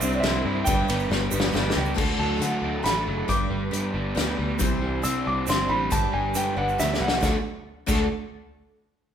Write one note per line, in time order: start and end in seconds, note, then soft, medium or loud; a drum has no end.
0.00 0.19 C2 loud
0.00 0.45 C3 medium
0.00 0.66 G3 medium
0.00 0.22 G3 soft
0.00 0.67 C4 medium
0.00 1.95 D4 medium
0.00 0.23 D4 soft
0.00 0.65 E4 medium
0.00 0.23 E4 medium
0.00 0.46 G4 medium
0.00 0.65 C5 medium
0.00 0.23 C5 medium
0.00 0.16 E5 loud
0.00 shaker loud
0.15 0.22 D5 medium
0.20 0.41 C2 medium
0.20 0.65 G3 medium
0.20 0.67 D4 medium
0.20 0.66 E5 medium
0.20 snare medium
0.20 ride medium
0.24 1.55 D4 medium
0.24 0.67 E4 medium
0.24 0.67 C5 medium
0.45 0.62 G2 loud
0.45 0.67 E4 medium
0.64 0.84 G1 loud
0.64 1.76 G2 medium
0.64 1.09 G3 medium
0.64 1.10 D4 medium
0.64 1.10 G4 medium
0.64 1.11 B4 loud
0.64 1.70 G5 medium
0.64 kick loud
0.64 ride medium
0.64 shaker loud
0.70 1.98 G3 medium
0.70 1.97 B4 medium
0.88 1.06 G1 medium
0.88 1.33 B3 medium
0.88 ride medium
0.88 shaker soft
1.00 shaker soft
1.10 1.28 G1 loud
1.10 1.32 G3 medium
1.10 1.98 G3 medium
1.10 1.31 D4 medium
1.10 1.30 G4 medium
1.10 1.29 B4 medium
1.10 snare medium
1.31 1.50 G1 loud
1.31 1.98 B3 medium
1.31 1.51 D4 medium
1.31 1.52 G4 medium
1.31 1.52 B4 medium
1.31 shaker medium
1.40 snare medium
1.52 1.71 G1 medium
1.52 1.74 G3 medium
1.52 1.74 D4 medium
1.52 1.98 D4 medium
1.52 1.73 G4 medium
1.52 1.71 B4 medium
1.52 snare medium
1.52 shaker soft
1.70 1.96 B4 medium
1.70 snare loud
1.74 1.93 C#2 medium
1.74 1.95 D4 soft
1.74 1.96 G4 medium
1.74 1.98 G4 medium
1.74 shaker soft
1.85 shaker soft
1.94 2.17 D2 medium
1.94 2.39 D3 medium
1.94 2.36 A3 medium
1.94 2.39 D4 medium
1.94 3.26 D4 medium
1.94 2.38 F#4 medium
1.94 2.39 A4 medium
1.94 3.28 A4 medium
1.94 kick medium
1.94 crash loud
1.99 3.07 D3 medium
1.99 3.28 F#5 medium
2.18 2.38 D2 medium
2.18 3.06 F#3 medium
2.18 2.40 A5 medium
2.38 2.60 D3 medium
2.38 2.82 A3 medium
2.38 2.83 D4 medium
2.38 2.83 F#4 medium
2.38 2.83 A4 medium
2.38 closed hi-hat medium
2.42 2.84 A3 medium
2.42 2.84 F#5 medium
2.62 2.82 D2 medium
2.62 3.94 D4 medium
2.80 3.27 A3 medium
2.80 3.28 D4 medium
2.80 2.83 A#5 medium
2.84 3.04 A1 medium
2.84 3.29 A3 medium
2.84 3.28 F#4 medium
2.84 3.28 A4 medium
2.84 3.27 B5 loud
2.84 snare medium
2.84 closed hi-hat medium
3.06 3.26 F#1 medium
3.06 3.28 F#3 medium
3.27 3.48 G1 medium
3.27 4.38 G2 medium
3.27 4.57 G3 medium
3.27 3.71 G3 medium
3.27 7.18 D4 medium
3.27 3.71 D4 medium
3.27 3.72 G4 medium
3.27 4.58 B4 medium
3.27 3.72 B4 medium
3.27 4.14 D6 medium
3.27 kick medium
3.27 closed hi-hat medium
3.50 3.70 G1 medium
3.50 4.38 G3 medium
3.71 3.92 G2 medium
3.71 4.14 G3 medium
3.71 4.15 B3 medium
3.71 4.15 D4 medium
3.71 4.15 G4 medium
3.71 4.16 B4 medium
3.71 closed hi-hat medium
3.94 4.13 G1 medium
3.94 4.64 D4 medium
4.15 4.36 D2 medium
4.15 4.59 G3 medium
4.15 4.60 B3 medium
4.15 4.59 D4 medium
4.15 4.60 G4 medium
4.15 4.60 B4 medium
4.15 snare medium
4.15 closed hi-hat medium
4.38 4.58 D2 medium
4.38 4.81 G3 medium
4.59 4.80 C2 medium
4.59 5.03 C3 medium
4.59 5.70 C3 medium
4.59 5.03 E3 medium
4.59 5.02 G3 medium
4.59 5.02 D4 medium
4.59 5.03 E4 medium
4.59 5.90 E4 medium
4.59 5.90 C5 medium
4.59 5.03 C5 medium
4.59 kick loud
4.59 closed hi-hat medium
4.59 shaker medium
4.82 5.02 C2 medium
4.82 5.68 G3 medium
5.02 5.24 C3 medium
5.02 5.45 G3 medium
5.02 5.46 C4 medium
5.02 5.48 D4 medium
5.02 5.47 E4 medium
5.02 5.47 C5 medium
5.02 5.25 E6 medium
5.02 closed hi-hat medium
5.02 shaker medium
5.25 5.46 C2 medium
5.25 6.57 D4 medium
5.25 5.47 D6 medium
5.46 5.67 G1 medium
5.46 5.69 G3 medium
5.46 5.91 C4 medium
5.46 5.68 D4 medium
5.46 5.68 E4 medium
5.46 5.67 C5 medium
5.46 5.69 C6 medium
5.46 snare medium
5.46 closed hi-hat medium
5.46 shaker medium
5.68 5.89 A1 medium
5.68 5.91 G3 medium
5.68 5.89 G3 soft
5.68 5.90 D4 soft
5.68 5.91 E4 soft
5.68 5.90 C5 soft
5.68 5.90 B5 medium
5.90 6.11 G1 medium
5.90 7.00 G2 medium
5.90 6.34 G3 medium
5.90 7.22 G3 medium
5.90 6.35 D4 medium
5.90 6.35 G4 medium
5.90 6.35 B4 medium
5.90 7.21 B4 medium
5.90 6.13 A5 medium
5.90 kick loud
5.90 closed hi-hat medium
5.90 shaker medium
6.13 6.33 G1 medium
6.13 7.00 G3 medium
6.13 6.34 G#5 medium
6.34 6.54 G2 medium
6.34 6.57 G3 medium
6.34 6.79 B3 medium
6.34 6.57 D4 medium
6.34 6.56 G4 medium
6.34 6.55 B4 medium
6.34 6.57 G5 medium
6.34 closed hi-hat medium
6.34 shaker medium
6.56 6.76 G1 medium
6.56 7.22 D4 medium
6.56 6.78 D4 soft
6.56 6.78 G4 soft
6.56 6.78 B4 medium
6.56 6.78 F#5 medium
6.69 shaker soft
6.78 6.99 D2 medium
6.78 7.20 G3 medium
6.78 7.23 B3 medium
6.78 7.20 D4 medium
6.78 7.22 G4 medium
6.78 7.23 B4 medium
6.78 7.00 E5 medium
6.78 snare medium
6.78 shaker medium
6.94 snare medium
7.00 7.20 C2 medium
7.00 7.23 G3 medium
7.00 7.22 F#5 medium
7.08 snare loud
7.12 shaker soft
7.20 7.35 D2 medium
7.20 7.34 D3 medium
7.20 7.36 D3 medium
7.20 7.35 A3 medium
7.20 7.36 A3 medium
7.20 7.42 D4 medium
7.20 7.35 D4 medium
7.20 7.36 D4 medium
7.20 7.35 F#4 medium
7.20 7.36 F#4 medium
7.20 7.42 A4 medium
7.20 7.36 A4 medium
7.20 7.42 F#5 medium
7.20 kick loud
7.20 snare medium
7.20 shaker medium
7.86 8.08 D2 loud
7.86 8.04 D3 medium
7.86 8.05 D3 medium
7.86 8.05 A3 medium
7.86 8.05 A3 loud
7.86 8.05 D4 loud
7.86 8.05 D4 medium
7.86 8.05 F#4 medium
7.86 8.06 F#4 loud
7.86 8.05 A4 medium
7.86 kick loud
7.86 crash medium
7.86 shaker medium